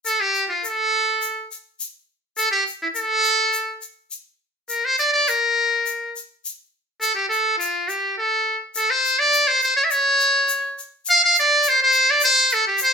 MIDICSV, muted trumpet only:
0, 0, Header, 1, 2, 480
1, 0, Start_track
1, 0, Tempo, 579151
1, 525, Time_signature, 2, 2, 24, 8
1, 10720, End_track
2, 0, Start_track
2, 0, Title_t, "Muted trumpet"
2, 0, Program_c, 0, 59
2, 51, Note_on_c, 0, 69, 98
2, 171, Note_on_c, 0, 67, 101
2, 183, Note_off_c, 0, 69, 0
2, 385, Note_off_c, 0, 67, 0
2, 385, Note_on_c, 0, 67, 60
2, 406, Note_on_c, 0, 65, 85
2, 419, Note_off_c, 0, 67, 0
2, 526, Note_off_c, 0, 65, 0
2, 536, Note_on_c, 0, 69, 99
2, 1218, Note_off_c, 0, 69, 0
2, 1967, Note_on_c, 0, 69, 104
2, 2079, Note_off_c, 0, 69, 0
2, 2083, Note_on_c, 0, 67, 95
2, 2192, Note_off_c, 0, 67, 0
2, 2337, Note_on_c, 0, 64, 77
2, 2389, Note_off_c, 0, 64, 0
2, 2459, Note_on_c, 0, 69, 107
2, 3141, Note_off_c, 0, 69, 0
2, 3894, Note_on_c, 0, 70, 84
2, 4019, Note_on_c, 0, 72, 97
2, 4032, Note_off_c, 0, 70, 0
2, 4133, Note_off_c, 0, 72, 0
2, 4138, Note_on_c, 0, 74, 97
2, 4243, Note_off_c, 0, 74, 0
2, 4248, Note_on_c, 0, 74, 97
2, 4381, Note_on_c, 0, 70, 88
2, 4394, Note_off_c, 0, 74, 0
2, 5097, Note_off_c, 0, 70, 0
2, 5811, Note_on_c, 0, 69, 102
2, 5923, Note_off_c, 0, 69, 0
2, 5929, Note_on_c, 0, 67, 98
2, 6037, Note_off_c, 0, 67, 0
2, 6042, Note_on_c, 0, 69, 98
2, 6270, Note_off_c, 0, 69, 0
2, 6286, Note_on_c, 0, 65, 89
2, 6535, Note_on_c, 0, 67, 78
2, 6547, Note_off_c, 0, 65, 0
2, 6774, Note_off_c, 0, 67, 0
2, 6781, Note_on_c, 0, 69, 85
2, 7112, Note_off_c, 0, 69, 0
2, 7262, Note_on_c, 0, 69, 92
2, 7380, Note_on_c, 0, 72, 103
2, 7393, Note_off_c, 0, 69, 0
2, 7620, Note_on_c, 0, 74, 96
2, 7632, Note_off_c, 0, 72, 0
2, 7851, Note_on_c, 0, 72, 102
2, 7864, Note_off_c, 0, 74, 0
2, 7971, Note_off_c, 0, 72, 0
2, 7985, Note_on_c, 0, 72, 101
2, 8090, Note_off_c, 0, 72, 0
2, 8094, Note_on_c, 0, 73, 83
2, 8156, Note_on_c, 0, 76, 71
2, 8169, Note_off_c, 0, 73, 0
2, 8214, Note_on_c, 0, 73, 106
2, 8227, Note_off_c, 0, 76, 0
2, 8932, Note_off_c, 0, 73, 0
2, 9196, Note_on_c, 0, 77, 117
2, 9294, Note_off_c, 0, 77, 0
2, 9318, Note_on_c, 0, 77, 110
2, 9415, Note_off_c, 0, 77, 0
2, 9444, Note_on_c, 0, 74, 102
2, 9684, Note_on_c, 0, 72, 104
2, 9696, Note_off_c, 0, 74, 0
2, 9784, Note_off_c, 0, 72, 0
2, 9798, Note_on_c, 0, 72, 106
2, 10033, Note_on_c, 0, 74, 94
2, 10046, Note_off_c, 0, 72, 0
2, 10138, Note_off_c, 0, 74, 0
2, 10144, Note_on_c, 0, 72, 115
2, 10387, Note_on_c, 0, 69, 95
2, 10399, Note_off_c, 0, 72, 0
2, 10494, Note_off_c, 0, 69, 0
2, 10506, Note_on_c, 0, 67, 77
2, 10605, Note_off_c, 0, 67, 0
2, 10629, Note_on_c, 0, 72, 100
2, 10720, Note_off_c, 0, 72, 0
2, 10720, End_track
0, 0, End_of_file